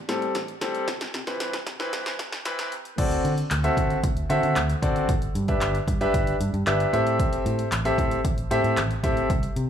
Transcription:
0.08 fingered electric bass A2, grand piano G3 C4 A4, snare, closed hi-hat
0.22 closed hi-hat
0.35 fingered electric bass A1, snare, closed hi-hat
0.48 closed hi-hat
0.61 fingered electric bass A2, grand piano G3 C4 A4, kick, snare, closed hi-hat
0.75 closed hi-hat
0.88 fingered electric bass C2, kick, snare, closed hi-hat
1.01 snare, closed hi-hat
1.14 fingered electric bass C3, snare, closed hi-hat
1.27 fingered electric bass C3, grand piano E3 C4 B4, kick, snare, closed hi-hat
1.40 fingered electric bass C2, snare, closed hi-hat
1.53 snare, closed hi-hat
1.66 fingered electric bass C3, kick, snare, closed hi-hat
1.80 grand piano E3 C4 B4, snare, closed hi-hat
1.93 fingered electric bass C2, kick, snare, closed hi-hat
2.06 snare, closed hi-hat
2.19 fingered electric bass C3, kick, snare, closed hi-hat
2.32 snare, closed hi-hat
2.45 fingered electric bass C2, grand piano E3 C4 B4, snare, closed hi-hat
2.59 snare, closed hi-hat
2.72 fingered electric bass C3, closed hi-hat
2.85 closed hi-hat
2.98 fingered electric bass D2, grand piano C4 F#4 A4 D5, kick, closed hi-hat, crash
3.11 closed hi-hat
3.25 fingered electric bass D3, closed hi-hat
3.38 closed hi-hat
3.51 fingered electric bass D2, clap, closed hi-hat
3.64 grand piano C4 F#4 A4 E5, closed hi-hat
3.77 fingered electric bass D3, kick, closed hi-hat
3.90 closed hi-hat
4.04 fingered electric bass D2, kick, closed hi-hat
4.17 closed hi-hat
4.30 fingered electric bass D3, grand piano C4 F#4 A4 E5, closed hi-hat
4.43 fingered electric bass D3, closed hi-hat
4.56 fingered electric bass D2, clap, closed hi-hat
4.70 closed hi-hat
4.82 fingered electric bass D3, grand piano C4 F#4 A4 D5, kick, closed hi-hat
4.96 closed hi-hat
5.09 fingered electric bass G1, kick, closed hi-hat
5.22 closed hi-hat
5.35 fingered electric bass G2, closed hi-hat
5.48 grand piano D4 G4 B4 E5, kick, closed hi-hat
5.61 fingered electric bass G1, clap, closed hi-hat
5.75 closed hi-hat
5.88 fingered electric bass G2, kick, closed hi-hat
6.01 grand piano D4 G4 B4 E5, closed hi-hat
6.14 fingered electric bass G1, kick, closed hi-hat
6.27 closed hi-hat
6.40 fingered electric bass G2, closed hi-hat
6.54 fingered electric bass G2, closed hi-hat
6.67 fingered electric bass G1, grand piano D4 G4 B4 E5, clap, closed hi-hat
6.80 closed hi-hat
6.93 fingered electric bass A2, grand piano C4 G4 A4 E5, closed hi-hat
7.07 closed hi-hat
7.19 kick, closed hi-hat
7.33 closed hi-hat
7.46 fingered electric bass A2, closed hi-hat
7.59 closed hi-hat
7.72 fingered electric bass A1, clap, closed hi-hat
7.85 grand piano C4 G4 A4 E5, closed hi-hat
7.98 fingered electric bass A2, kick, closed hi-hat
8.11 closed hi-hat
8.25 fingered electric bass A1, kick, closed hi-hat
8.38 closed hi-hat
8.51 fingered electric bass A2, grand piano C4 G4 A4 E5, closed hi-hat
8.64 fingered electric bass A2, closed hi-hat
8.77 fingered electric bass A1, clap, closed hi-hat
8.91 closed hi-hat
9.03 fingered electric bass A2, grand piano C4 G4 A4 E5, kick, closed hi-hat
9.17 closed hi-hat
9.30 fingered electric bass C2, kick, closed hi-hat
9.43 closed hi-hat
9.56 fingered electric bass C3, closed hi-hat

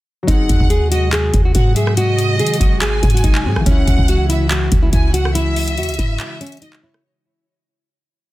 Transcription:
0.23 felt piano F#3
0.27 808-style bass G#1, analog synth pad C3 F#3 G#3 F#4, felt piano C4, nylon-string guitar D#4, violin section F#5, kick, closed hi-hat
0.34 felt piano G#4
0.49 808-style bass D#2, kick, closed hi-hat
0.60 808-style bass D#2, kick
0.70 nylon-string guitar G#4, closed hi-hat
0.92 nylon-string guitar F#4, violin section D#5, closed hi-hat
1.13 nylon-string guitar G#4, clap, closed hi-hat
1.34 808-style bass D#2, kick, closed hi-hat
1.45 nylon-string guitar F#4
1.55 808-style bass G#2, nylon-string guitar F#4, violin section F#5, kick, closed hi-hat
1.76 nylon-string guitar G#4, violin section E5, closed hi-hat
1.87 cross-stick
1.97 nylon-string guitar F#4, violin section D#5, closed hi-hat
2.18 closed hi-hat
2.39 808-style bass D#3, nylon-string guitar G#4, closed hi-hat
2.47 closed hi-hat
2.54 closed hi-hat
2.60 808-style bass G#1, nylon-string guitar F#4, kick, closed hi-hat
2.81 nylon-string guitar G#4, violin section G#5, clap, closed hi-hat
3.03 808-style bass G#2, kick, closed hi-hat
3.10 closed hi-hat
3.14 nylon-string guitar F#4, closed hi-hat
3.24 808-style bass G#1, nylon-string guitar D#4, kick, closed hi-hat
3.35 clap
3.43 808-style bass G#2, felt piano F#3 C4
3.48 felt piano G#4
3.56 808-style bass G#1, felt piano E3, cross-stick
3.65 808-style bass C#2, analog synth pad C#3 E3, felt piano C#4, nylon-string guitar C#4, violin section F#5, kick, closed hi-hat
3.71 felt piano E4
3.87 808-style bass C#2, kick, closed hi-hat
3.98 808-style bass C#2, kick
4.08 nylon-string guitar F#4, closed hi-hat
4.29 nylon-string guitar E4, violin section E5, closed hi-hat
4.51 nylon-string guitar F#4, clap, closed hi-hat
4.72 808-style bass C#2, kick, closed hi-hat
4.83 nylon-string guitar E4
4.93 808-style bass C#2, nylon-string guitar E4, violin section G#5, kick, closed hi-hat
5.14 nylon-string guitar F#4, violin section F#5, closed hi-hat
5.25 cross-stick
5.35 nylon-string guitar E4, violin section E5, closed hi-hat
5.56 closed hi-hat, open hi-hat
5.68 closed hi-hat
5.78 808-style bass E2, nylon-string guitar F#4, closed hi-hat
5.83 closed hi-hat
5.89 808-style bass C#2, closed hi-hat
5.94 closed hi-hat
5.99 808-style bass G#2, nylon-string guitar E4, kick, closed hi-hat
6.20 clap, closed hi-hat
6.41 nylon-string guitar C#4, closed hi-hat
6.47 closed hi-hat
6.52 closed hi-hat
6.57 closed hi-hat
6.62 nylon-string guitar D#4, violin section D#5, closed hi-hat
6.73 clap
6.83 nylon-string guitar E4, violin section C#5
6.94 cross-stick

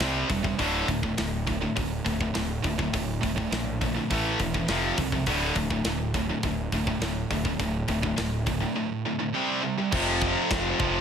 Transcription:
0.00 picked electric bass C2, distorted electric guitar C3 G3 C4, snare, open hi-hat
0.29 picked electric bass E1, distorted electric guitar C3 G3, kick, open hi-hat
0.43 distorted electric guitar C3 G3, kick
0.59 picked electric bass D1, distorted electric guitar D2 A2 D3, kick, open hi-hat
0.88 picked electric bass D1, distorted electric guitar D2 A2, kick, open hi-hat
1.03 distorted electric guitar D2 A2, kick
1.18 picked electric bass D1, distorted electric guitar D2 A2, snare, open hi-hat
1.47 distorted electric guitar D2 A2, kick, open hi-hat
1.61 distorted electric guitar D2 A2
1.76 picked electric bass D1, distorted electric guitar D2 A2, kick, open hi-hat
2.05 picked electric bass D1, distorted electric guitar D2 A2, kick, open hi-hat
2.21 distorted electric guitar D2 A2, kick
2.34 picked electric bass D1, distorted electric guitar D2 A2, snare, open hi-hat
2.63 picked electric bass D1, distorted electric guitar D2 A2, kick, open hi-hat
2.78 distorted electric guitar D2 A2, kick
2.93 picked electric bass D1, distorted electric guitar D2 A2, kick, open hi-hat
3.21 picked electric bass D1, distorted electric guitar D2 A2, kick, open hi-hat
3.36 distorted electric guitar D2 A2, kick
3.51 picked electric bass A#1, distorted electric guitar D2 A2, snare, open hi-hat
3.81 distorted electric guitar D2 A2, kick, open hi-hat
3.95 distorted electric guitar D2 A2
4.10 picked electric bass A1, distorted electric guitar A2 E3 A3, kick, open hi-hat
4.39 picked electric bass E1, distorted electric guitar A2 E3, kick, open hi-hat
4.54 distorted electric guitar A2 E3, kick
4.68 picked electric bass F1, distorted electric guitar F2 C3 F3, snare, open hi-hat
4.98 picked electric bass C2, distorted electric guitar F2 C3, kick, open hi-hat
5.12 distorted electric guitar F2 C3, kick
5.26 picked electric bass D1, distorted electric guitar D2 A2 D3, kick, open hi-hat
5.55 picked electric bass D1, distorted electric guitar D2 A2, kick, open hi-hat
5.70 distorted electric guitar D2 A2, kick
5.85 picked electric bass D1, distorted electric guitar D2 A2, snare, open hi-hat
6.14 distorted electric guitar D2 A2, kick, open hi-hat
6.29 distorted electric guitar D2 A2
6.43 picked electric bass D1, distorted electric guitar D2 A2, kick, open hi-hat
6.72 picked electric bass D1, distorted electric guitar D2 A2, kick, open hi-hat
6.87 distorted electric guitar D2 A2, kick
7.01 picked electric bass D1, distorted electric guitar D2 A2, snare, open hi-hat
7.31 picked electric bass D1, distorted electric guitar D2 A2, kick, open hi-hat
7.45 distorted electric guitar D2 A2, kick
7.60 picked electric bass D1, distorted electric guitar D2 A2, kick, open hi-hat
7.88 picked electric bass D1, distorted electric guitar D2 A2, kick, open hi-hat
8.02 distorted electric guitar D2 A2, kick
8.18 picked electric bass D1, distorted electric guitar D2 A2, snare, open hi-hat
8.47 distorted electric guitar D2 A2, kick, open hi-hat
8.62 distorted electric guitar D2 A2
8.76 distorted electric guitar D2 A2
9.05 distorted electric guitar D2 A2
9.19 distorted electric guitar D2 A2
9.34 distorted electric guitar C3 G3 C4
9.63 distorted electric guitar C3 G3
9.78 distorted electric guitar C3 G3
9.91 picked electric bass F1, distorted electric guitar F2 C3 F3, analog synth pad F3 C4 A4 C5, kick, crash, china
10.22 kick
10.51 picked electric bass F1, kick, snare, china
10.79 picked electric bass F1, distorted electric guitar F2 C3 F3, kick

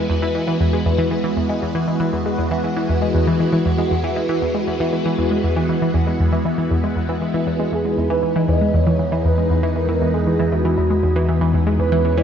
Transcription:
Already playing: string machine E3 G#3 B3 F#4
0.10 synth arpeggio sound E2
0.22 synth arpeggio sound E3
0.35 synth arpeggio sound E3
0.48 synth arpeggio sound E3
0.60 synth arpeggio sound E2
0.73 synth arpeggio sound G#3
0.86 synth arpeggio sound E2
0.98 synth arpeggio sound E3
1.11 synth arpeggio sound E3
1.24 synth arpeggio sound E3
1.37 synth arpeggio sound E2
1.50 synth arpeggio sound G#3
1.62 synth arpeggio sound E2
1.75 synth arpeggio sound E3
1.88 synth arpeggio sound E3
2.00 synth arpeggio sound E3
2.13 synth arpeggio sound E2
2.26 synth arpeggio sound G#3
2.38 synth arpeggio sound E2
2.51 synth arpeggio sound E3
2.64 synth arpeggio sound E3
2.77 synth arpeggio sound E3
2.89 synth arpeggio sound E2
3.02 synth arpeggio sound G#3
3.15 synth arpeggio sound E2
3.27 synth arpeggio sound E3
3.40 synth arpeggio sound E3
3.53 synth arpeggio sound E3
3.66 synth arpeggio sound E2
3.78 synth arpeggio sound G#3
3.91 synth arpeggio sound E2
4.04 synth arpeggio sound E3
4.16 synth arpeggio sound E3
4.29 synth arpeggio sound E3
4.42 synth arpeggio sound E2
4.55 synth arpeggio sound G#3
4.68 synth arpeggio sound E2
4.80 synth arpeggio sound E3
4.93 synth arpeggio sound E3
5.06 synth arpeggio sound E3
5.18 synth arpeggio sound E2
5.31 synth arpeggio sound G#3
5.44 synth arpeggio sound E2
5.56 synth arpeggio sound E3
5.69 synth arpeggio sound E3
5.82 synth arpeggio sound E3
5.94 synth arpeggio sound E2
6.07 synth arpeggio sound G#3
6.20 synth arpeggio sound E2
6.32 synth arpeggio sound E3
6.45 synth arpeggio sound E3
6.58 synth arpeggio sound E3
6.71 synth arpeggio sound E2
6.84 synth arpeggio sound G#3
6.96 synth arpeggio sound E2
7.09 synth arpeggio sound E3
7.22 synth arpeggio sound E3
7.34 synth arpeggio sound E3
7.47 synth arpeggio sound E2
7.60 synth arpeggio sound G#3
7.72 synth arpeggio sound E2, synth drone E2, string machine D#4, analog synth lead G#4
7.85 synth arpeggio sound G#3
7.98 synth arpeggio sound E2
8.10 synth arpeggio sound E3, analog synth lead B4
8.23 synth arpeggio sound E3
8.36 synth arpeggio sound E3
8.48 synth arpeggio sound E2, analog synth lead D#5
8.61 synth arpeggio sound G#3
8.74 synth arpeggio sound E2, analog synth lead C#5
8.87 synth arpeggio sound E3
8.99 synth arpeggio sound E3
9.12 synth arpeggio sound E3
9.25 synth arpeggio sound E2, analog synth lead B4
9.38 synth arpeggio sound G#3
9.50 synth arpeggio sound E2
9.63 synth arpeggio sound E3
9.76 synth arpeggio sound E3, analog synth lead A#4
9.89 synth arpeggio sound E3
10.01 synth arpeggio sound E2
10.14 synth arpeggio sound G#3, analog synth lead G#4
10.27 synth arpeggio sound E2
10.39 synth arpeggio sound E3
10.52 synth arpeggio sound E3, analog synth lead F#4
10.65 synth arpeggio sound E3
10.78 synth arpeggio sound E2
10.90 synth arpeggio sound G#3
11.03 synth arpeggio sound E2
11.16 synth arpeggio sound E3
11.29 synth arpeggio sound E3
11.41 synth arpeggio sound E3
11.54 synth arpeggio sound E2
11.67 synth arpeggio sound G#3
11.79 synth arpeggio sound E2, string machine C#4, analog synth lead B4
11.92 synth arpeggio sound E3
12.05 synth arpeggio sound E3
12.17 synth arpeggio sound E3, analog synth lead D#5

